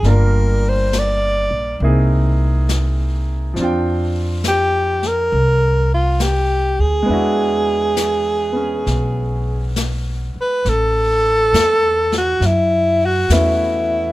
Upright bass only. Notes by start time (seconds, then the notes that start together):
0.03 G1
1.51 A#1
1.80 C2
3.56 F2
5.32 C2
6.79 D2
7.08 E2
8.86 B1
10.35 muted upright bass stroke
10.65 A1
11.53 E2
12.40 F#2
13.29 E2